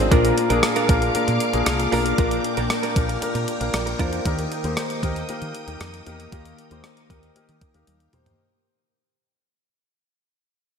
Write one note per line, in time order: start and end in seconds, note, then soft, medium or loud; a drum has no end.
0.00 0.14 C4 medium
0.00 0.11 D4 medium
0.00 0.14 D#4 medium
0.00 0.12 F4 medium
0.00 0.13 G#4 medium
0.00 0.12 A#4 medium
0.00 0.14 C5 medium
0.00 0.13 D5 medium
0.11 0.31 A#1 loud
0.11 0.85 A#2 medium
0.11 0.45 A#3 medium
0.11 0.46 D4 medium
0.11 0.35 D4 medium
0.11 0.46 F4 medium
0.11 0.35 F4 medium
0.11 8.35 A#4 medium
0.11 0.46 A#4 loud
0.11 0.36 A#4 loud
0.11 2.16 F5 medium
0.11 4.21 D6 medium
0.11 kick loud
0.11 closed hi-hat medium
0.25 closed hi-hat medium
0.37 muted clean electric guitar stroke soft
0.37 closed hi-hat medium
0.50 0.60 A#1 medium
0.50 0.84 A#3 medium
0.50 0.85 D4 medium
0.50 0.62 D4 medium
0.50 0.62 F4 medium
0.50 0.85 F4 medium
0.50 0.85 G#4 medium
0.50 0.63 A#4 medium
0.50 closed hi-hat soft
0.63 muted clean electric guitar stroke soft
0.63 cross-stick loud
0.63 closed hi-hat medium
0.76 0.88 D4 medium
0.76 0.88 F4 medium
0.76 0.89 A#4 medium
0.76 closed hi-hat soft
0.89 1.08 A#1 medium
0.89 1.12 A#3 medium
0.89 1.12 D4 medium
0.89 1.12 F4 medium
0.89 1.12 A#4 medium
0.89 muted clean electric guitar stroke soft
0.89 kick medium
0.89 closed hi-hat medium
1.02 muted clean electric guitar stroke soft
1.02 closed hi-hat soft
1.15 1.49 A#3 medium
1.15 1.49 D4 medium
1.15 1.49 F4 medium
1.15 1.50 A#4 medium
1.15 muted clean electric guitar stroke soft
1.15 muted fretless electric bass stroke soft
1.15 closed hi-hat medium
1.27 1.38 A#2 medium
1.27 muted clean electric guitar stroke soft
1.27 closed hi-hat soft
1.40 closed hi-hat medium
1.53 1.64 A#1 medium
1.53 1.88 A#3 medium
1.53 1.88 D4 medium
1.53 1.88 F4 medium
1.53 1.88 G#4 medium
1.53 muted clean electric guitar stroke soft
1.53 closed hi-hat soft
1.66 1.86 C2 medium
1.66 muted clean electric guitar stroke soft
1.66 cross-stick loud
1.66 closed hi-hat loud
1.80 muted clean electric guitar stroke soft
1.80 closed hi-hat soft
1.92 2.12 B1 medium
1.92 2.15 A#3 medium
1.92 2.12 D4 medium
1.92 2.15 D4 medium
1.92 2.05 F4 medium
1.92 2.15 F4 medium
1.92 2.16 A#4 medium
1.92 2.04 A#4 medium
1.92 open hi-hat medium
2.05 muted clean electric guitar stroke soft
2.05 closed hi-hat medium
2.18 2.38 A#1 loud
2.18 2.92 A#2 medium
2.18 2.52 A#3 medium
2.18 2.52 D4 medium
2.18 2.42 D4 medium
2.18 2.53 F4 medium
2.18 2.42 F4 medium
2.18 2.53 A#4 loud
2.18 2.43 A#4 medium
2.18 8.35 G5 medium
2.18 kick loud
2.18 closed hi-hat medium
2.31 closed hi-hat medium
2.44 muted clean electric guitar stroke soft
2.44 closed hi-hat medium
2.57 2.67 A#1 medium
2.57 2.91 A#3 medium
2.57 2.91 D4 medium
2.57 2.69 D4 medium
2.57 2.92 F4 medium
2.57 2.70 F4 medium
2.57 2.70 A#4 medium
2.57 2.92 A#4 medium
2.57 closed hi-hat soft
2.70 muted clean electric guitar stroke soft
2.70 cross-stick loud
2.70 closed hi-hat medium
2.83 2.95 D4 medium
2.83 2.95 F4 medium
2.83 2.96 A#4 medium
2.83 closed hi-hat soft
2.95 3.16 A#1 medium
2.95 3.19 A#3 medium
2.95 3.19 D4 medium
2.95 3.19 F4 medium
2.95 3.19 A#4 medium
2.95 muted clean electric guitar stroke soft
2.95 kick medium
2.95 closed hi-hat medium
3.09 muted clean electric guitar stroke soft
3.09 closed hi-hat soft
3.22 3.56 A#3 medium
3.22 3.56 D4 medium
3.22 3.56 F4 medium
3.22 3.57 A#4 medium
3.22 muted clean electric guitar stroke soft
3.22 muted fretless electric bass stroke soft
3.22 closed hi-hat medium
3.35 3.45 A#2 medium
3.35 muted clean electric guitar stroke soft
3.35 closed hi-hat soft
3.48 closed hi-hat medium
3.60 3.70 A#1 medium
3.60 3.95 A#3 medium
3.60 3.95 D4 medium
3.60 3.95 F4 medium
3.60 3.95 A#4 medium
3.60 muted clean electric guitar stroke soft
3.60 closed hi-hat soft
3.73 3.93 A#1 medium
3.73 muted clean electric guitar stroke soft
3.73 cross-stick loud
3.73 closed hi-hat loud
3.86 muted clean electric guitar stroke soft
3.86 closed hi-hat soft
3.99 4.19 E2 medium
3.99 4.22 A#3 medium
3.99 4.19 D4 medium
3.99 4.22 D4 medium
3.99 4.22 F4 medium
3.99 4.12 F4 medium
3.99 4.11 A#4 medium
3.99 4.23 C5 medium
3.99 kick medium
3.99 closed hi-hat medium
4.12 muted clean electric guitar stroke soft
4.12 closed hi-hat medium
4.25 4.45 D#2 loud
4.25 4.99 D#3 medium
4.25 4.59 A#3 medium
4.25 4.59 D#4 medium
4.25 4.60 G4 medium
4.25 4.60 A#4 medium
4.25 8.35 D#6 medium
4.25 kick medium
4.25 closed hi-hat medium
4.39 closed hi-hat medium
4.52 closed hi-hat medium
4.64 4.74 D#2 medium
4.64 4.98 A#3 medium
4.64 4.98 D#4 medium
4.64 4.98 G4 medium
4.64 4.99 C5 medium
4.64 closed hi-hat soft
4.77 cross-stick loud
4.77 closed hi-hat medium
4.90 closed hi-hat soft
5.02 5.22 D#2 medium
5.02 5.25 A#3 medium
5.02 5.26 D#4 medium
5.02 5.26 G4 medium
5.02 5.26 A#4 medium
5.02 kick medium
5.02 closed hi-hat medium
5.16 closed hi-hat soft
5.29 5.63 A#3 medium
5.29 5.63 D#4 medium
5.29 5.63 G4 medium
5.29 5.64 A#4 medium
5.29 closed hi-hat medium
5.42 5.52 D#3 medium
5.42 closed hi-hat soft
5.55 closed hi-hat medium
5.67 5.77 D#2 medium
5.67 6.02 A#3 medium
5.67 6.02 D#4 medium
5.67 6.02 G4 medium
5.67 6.02 A#4 medium
5.67 closed hi-hat soft
5.81 6.00 F2 medium
5.81 cross-stick loud
5.81 closed hi-hat loud
5.94 closed hi-hat soft
6.06 6.26 E2 medium
6.06 6.29 A#3 medium
6.06 6.29 D#4 medium
6.06 6.29 G4 medium
6.06 6.30 A#4 medium
6.06 closed hi-hat medium
6.20 closed hi-hat soft
6.32 6.52 D#2 medium
6.32 7.06 D#3 medium
6.32 6.66 A#3 medium
6.32 6.67 D#4 medium
6.32 6.67 G4 medium
6.32 6.67 A#4 medium
6.32 kick medium
6.32 closed hi-hat medium
6.45 closed hi-hat medium
6.58 closed hi-hat medium
6.71 6.81 D#2 medium
6.71 7.05 A#3 medium
6.71 7.05 D#4 medium
6.71 7.06 G4 medium
6.71 7.06 C5 medium
6.71 closed hi-hat soft
6.84 cross-stick loud
6.84 closed hi-hat medium
6.97 closed hi-hat soft
7.09 7.29 D#2 medium
7.09 7.32 A#3 medium
7.09 7.32 D#4 medium
7.09 7.33 G4 medium
7.09 7.33 A#4 medium
7.09 kick medium
7.09 closed hi-hat medium
7.23 closed hi-hat soft
7.35 7.70 A#3 medium
7.35 7.70 D#4 medium
7.35 7.70 G4 medium
7.35 7.70 A#4 medium
7.35 closed hi-hat medium
7.49 7.59 D#3 medium
7.49 closed hi-hat soft
7.61 kick medium
7.61 closed hi-hat medium
7.74 7.84 D#2 medium
7.74 8.08 A#3 medium
7.74 8.09 D#4 medium
7.74 8.09 G4 medium
7.74 8.09 A#4 medium
7.74 closed hi-hat soft
7.87 8.07 D#2 medium
7.87 closed hi-hat loud
7.87 high tom soft
8.00 closed hi-hat soft
8.13 8.33 E2 medium
8.13 8.36 A#3 medium
8.13 8.36 D#4 medium
8.13 8.36 G4 medium
8.13 8.36 C5 medium
8.13 closed hi-hat medium
8.13 mid tom medium
8.26 closed hi-hat medium
8.26 floor tom medium